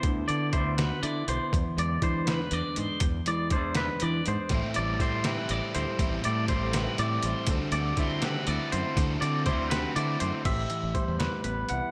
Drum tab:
CC |------|------|------|------|
HH |xxxxxx|xxxxxx|xxxxxx|xxxxxx|
SD |---o--|---o--|---o--|---o--|
BD |o-o---|o-o---|o-o---|o-o---|

CC |------|------|------|x-----|
HH |xxxxxx|xxxxxx|xxxxxx|xxxxxx|
SD |---o--|---o--|---o--|---o--|
BD |o-o---|o-o---|o-o---|o-o---|